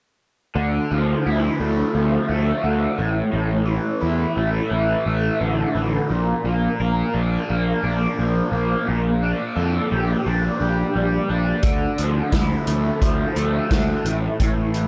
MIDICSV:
0, 0, Header, 1, 4, 480
1, 0, Start_track
1, 0, Tempo, 692042
1, 390, Time_signature, 4, 2, 24, 8
1, 10319, End_track
2, 0, Start_track
2, 0, Title_t, "Overdriven electric guitar"
2, 0, Program_c, 0, 29
2, 384, Note_on_c, 0, 50, 65
2, 630, Note_on_c, 0, 53, 57
2, 876, Note_on_c, 0, 64, 61
2, 1111, Note_on_c, 0, 57, 56
2, 1340, Note_off_c, 0, 53, 0
2, 1348, Note_on_c, 0, 53, 60
2, 1574, Note_off_c, 0, 57, 0
2, 1583, Note_on_c, 0, 57, 52
2, 1588, Note_off_c, 0, 50, 0
2, 1824, Note_on_c, 0, 50, 54
2, 2064, Note_on_c, 0, 45, 59
2, 2067, Note_off_c, 0, 57, 0
2, 2068, Note_off_c, 0, 50, 0
2, 2070, Note_off_c, 0, 53, 0
2, 2074, Note_off_c, 0, 64, 0
2, 2292, Note_off_c, 0, 45, 0
2, 2300, Note_on_c, 0, 45, 68
2, 2538, Note_on_c, 0, 52, 56
2, 2782, Note_on_c, 0, 64, 66
2, 3023, Note_on_c, 0, 57, 59
2, 3253, Note_off_c, 0, 52, 0
2, 3262, Note_on_c, 0, 52, 65
2, 3499, Note_off_c, 0, 57, 0
2, 3506, Note_off_c, 0, 45, 0
2, 3508, Note_on_c, 0, 57, 55
2, 3746, Note_on_c, 0, 50, 64
2, 3977, Note_off_c, 0, 52, 0
2, 3986, Note_on_c, 0, 52, 59
2, 3988, Note_off_c, 0, 64, 0
2, 4228, Note_on_c, 0, 46, 68
2, 4229, Note_off_c, 0, 50, 0
2, 4229, Note_off_c, 0, 52, 0
2, 4230, Note_off_c, 0, 57, 0
2, 4473, Note_on_c, 0, 58, 57
2, 4717, Note_on_c, 0, 70, 69
2, 4951, Note_on_c, 0, 62, 59
2, 5190, Note_off_c, 0, 58, 0
2, 5198, Note_on_c, 0, 58, 63
2, 5431, Note_off_c, 0, 46, 0
2, 5434, Note_off_c, 0, 62, 0
2, 5436, Note_on_c, 0, 62, 60
2, 5680, Note_on_c, 0, 53, 58
2, 5908, Note_off_c, 0, 58, 0
2, 5915, Note_off_c, 0, 70, 0
2, 5916, Note_on_c, 0, 58, 60
2, 6145, Note_on_c, 0, 46, 70
2, 6155, Note_off_c, 0, 58, 0
2, 6157, Note_off_c, 0, 53, 0
2, 6397, Note_off_c, 0, 62, 0
2, 6397, Note_on_c, 0, 62, 53
2, 6629, Note_on_c, 0, 69, 64
2, 6879, Note_on_c, 0, 67, 53
2, 7116, Note_off_c, 0, 62, 0
2, 7119, Note_on_c, 0, 62, 61
2, 7349, Note_off_c, 0, 46, 0
2, 7349, Note_off_c, 0, 67, 0
2, 7357, Note_on_c, 0, 67, 58
2, 7597, Note_on_c, 0, 55, 58
2, 7828, Note_off_c, 0, 62, 0
2, 7831, Note_on_c, 0, 62, 66
2, 8071, Note_on_c, 0, 50, 68
2, 8075, Note_off_c, 0, 55, 0
2, 8076, Note_off_c, 0, 67, 0
2, 8309, Note_on_c, 0, 53, 55
2, 8547, Note_on_c, 0, 64, 58
2, 8568, Note_off_c, 0, 62, 0
2, 8786, Note_on_c, 0, 57, 59
2, 9018, Note_off_c, 0, 53, 0
2, 9027, Note_on_c, 0, 53, 63
2, 9056, Note_off_c, 0, 69, 0
2, 9248, Note_off_c, 0, 57, 0
2, 9257, Note_on_c, 0, 57, 54
2, 9272, Note_off_c, 0, 50, 0
2, 9503, Note_on_c, 0, 50, 58
2, 9745, Note_off_c, 0, 57, 0
2, 9746, Note_on_c, 0, 45, 60
2, 9748, Note_off_c, 0, 50, 0
2, 9750, Note_off_c, 0, 53, 0
2, 9750, Note_off_c, 0, 64, 0
2, 9989, Note_off_c, 0, 45, 0
2, 9997, Note_on_c, 0, 45, 68
2, 10234, Note_on_c, 0, 52, 59
2, 10319, Note_off_c, 0, 45, 0
2, 10319, Note_off_c, 0, 52, 0
2, 10319, End_track
3, 0, Start_track
3, 0, Title_t, "Picked electric bass"
3, 0, Program_c, 1, 34
3, 385, Note_on_c, 1, 38, 88
3, 539, Note_off_c, 1, 38, 0
3, 635, Note_on_c, 1, 38, 74
3, 786, Note_off_c, 1, 38, 0
3, 878, Note_on_c, 1, 38, 71
3, 1027, Note_off_c, 1, 38, 0
3, 1111, Note_on_c, 1, 38, 76
3, 1263, Note_off_c, 1, 38, 0
3, 1351, Note_on_c, 1, 38, 79
3, 1503, Note_off_c, 1, 38, 0
3, 1592, Note_on_c, 1, 38, 79
3, 1744, Note_off_c, 1, 38, 0
3, 1830, Note_on_c, 1, 38, 69
3, 1983, Note_off_c, 1, 38, 0
3, 2072, Note_on_c, 1, 33, 72
3, 2224, Note_off_c, 1, 33, 0
3, 2313, Note_on_c, 1, 33, 84
3, 2616, Note_off_c, 1, 33, 0
3, 2792, Note_on_c, 1, 40, 73
3, 2944, Note_off_c, 1, 40, 0
3, 3031, Note_on_c, 1, 33, 72
3, 3183, Note_off_c, 1, 33, 0
3, 3269, Note_on_c, 1, 33, 71
3, 3422, Note_off_c, 1, 33, 0
3, 3511, Note_on_c, 1, 33, 78
3, 3663, Note_off_c, 1, 33, 0
3, 3752, Note_on_c, 1, 33, 75
3, 3904, Note_off_c, 1, 33, 0
3, 3990, Note_on_c, 1, 33, 73
3, 4143, Note_off_c, 1, 33, 0
3, 4234, Note_on_c, 1, 34, 80
3, 4386, Note_off_c, 1, 34, 0
3, 4469, Note_on_c, 1, 34, 66
3, 4622, Note_off_c, 1, 34, 0
3, 4716, Note_on_c, 1, 34, 69
3, 4867, Note_off_c, 1, 34, 0
3, 4956, Note_on_c, 1, 34, 74
3, 5107, Note_off_c, 1, 34, 0
3, 5203, Note_on_c, 1, 34, 79
3, 5352, Note_off_c, 1, 34, 0
3, 5435, Note_on_c, 1, 34, 75
3, 5586, Note_off_c, 1, 34, 0
3, 5679, Note_on_c, 1, 34, 68
3, 5829, Note_off_c, 1, 34, 0
3, 5909, Note_on_c, 1, 34, 78
3, 6062, Note_off_c, 1, 34, 0
3, 6163, Note_on_c, 1, 34, 80
3, 6464, Note_off_c, 1, 34, 0
3, 6634, Note_on_c, 1, 41, 68
3, 6786, Note_off_c, 1, 41, 0
3, 6881, Note_on_c, 1, 34, 73
3, 7030, Note_off_c, 1, 34, 0
3, 7119, Note_on_c, 1, 34, 73
3, 7269, Note_off_c, 1, 34, 0
3, 7357, Note_on_c, 1, 34, 80
3, 7508, Note_off_c, 1, 34, 0
3, 7599, Note_on_c, 1, 34, 67
3, 7749, Note_off_c, 1, 34, 0
3, 7837, Note_on_c, 1, 34, 73
3, 7988, Note_off_c, 1, 34, 0
3, 8069, Note_on_c, 1, 38, 75
3, 8223, Note_off_c, 1, 38, 0
3, 8317, Note_on_c, 1, 38, 71
3, 8468, Note_off_c, 1, 38, 0
3, 8549, Note_on_c, 1, 38, 72
3, 8702, Note_off_c, 1, 38, 0
3, 8792, Note_on_c, 1, 38, 80
3, 8944, Note_off_c, 1, 38, 0
3, 9030, Note_on_c, 1, 38, 80
3, 9183, Note_off_c, 1, 38, 0
3, 9267, Note_on_c, 1, 38, 79
3, 9421, Note_off_c, 1, 38, 0
3, 9509, Note_on_c, 1, 38, 70
3, 9663, Note_off_c, 1, 38, 0
3, 9743, Note_on_c, 1, 33, 77
3, 9898, Note_off_c, 1, 33, 0
3, 9988, Note_on_c, 1, 33, 82
3, 10293, Note_off_c, 1, 33, 0
3, 10319, End_track
4, 0, Start_track
4, 0, Title_t, "Drums"
4, 8066, Note_on_c, 9, 42, 73
4, 8069, Note_on_c, 9, 36, 104
4, 8135, Note_off_c, 9, 42, 0
4, 8138, Note_off_c, 9, 36, 0
4, 8310, Note_on_c, 9, 42, 54
4, 8380, Note_off_c, 9, 42, 0
4, 8548, Note_on_c, 9, 36, 91
4, 8548, Note_on_c, 9, 42, 64
4, 8554, Note_on_c, 9, 38, 94
4, 8617, Note_off_c, 9, 42, 0
4, 8618, Note_off_c, 9, 36, 0
4, 8623, Note_off_c, 9, 38, 0
4, 8789, Note_on_c, 9, 42, 55
4, 8858, Note_off_c, 9, 42, 0
4, 9028, Note_on_c, 9, 36, 101
4, 9031, Note_on_c, 9, 42, 68
4, 9098, Note_off_c, 9, 36, 0
4, 9100, Note_off_c, 9, 42, 0
4, 9268, Note_on_c, 9, 42, 56
4, 9337, Note_off_c, 9, 42, 0
4, 9508, Note_on_c, 9, 36, 96
4, 9508, Note_on_c, 9, 42, 66
4, 9515, Note_on_c, 9, 38, 97
4, 9578, Note_off_c, 9, 36, 0
4, 9578, Note_off_c, 9, 42, 0
4, 9584, Note_off_c, 9, 38, 0
4, 9749, Note_on_c, 9, 42, 56
4, 9819, Note_off_c, 9, 42, 0
4, 9987, Note_on_c, 9, 36, 90
4, 9987, Note_on_c, 9, 42, 82
4, 10056, Note_off_c, 9, 42, 0
4, 10057, Note_off_c, 9, 36, 0
4, 10224, Note_on_c, 9, 42, 54
4, 10294, Note_off_c, 9, 42, 0
4, 10319, End_track
0, 0, End_of_file